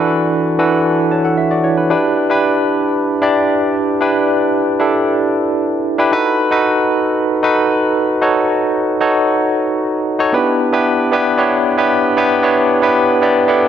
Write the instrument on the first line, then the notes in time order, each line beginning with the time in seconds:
tine electric piano
Already playing: E3 D4 F#4 A4 B4
0.58 E3 D4 F#4 A4 B4
1.11 C#5 A5
1.25 A4 F#5
1.37 E5
1.51 F#4 D5
1.64 E4 C#5
1.77 D4 B4
1.90 D4 E4 G4 B4
2.30 D4 E4 G4 B4
3.22 D4 E4 G4 D5
4.01 D4 E4 G4 B4
4.80 D4 E4 G4 A4
5.98 D4 E4 G4 B4
6.12 D#4 F#4 A4 B4
6.51 D#4 F#4 A4 B4
7.43 D#4 F#4 A4 B4
8.21 D#4 F#4 A4 C#5
9.01 D#4 F#4 A4 C#5
10.19 D#4 F#4 A4 C#5
10.33 B3 D4 E4 G4 B4
10.72 B3 D4 E4 G4 B4
11.12 B3 D4 E4 G4 B4
11.38 B3 D4 E4 G4 C#5
11.77 B3 D4 E4 G4 B4
12.17 B3 D4 E4 G4 B4
12.43 B3 D4 E4 G4 C#5
12.82 B3 D4 E4 G4 B4
13.22 B3 D4 E4 G4 D5
13.48 B3 D4 E4 G4 A4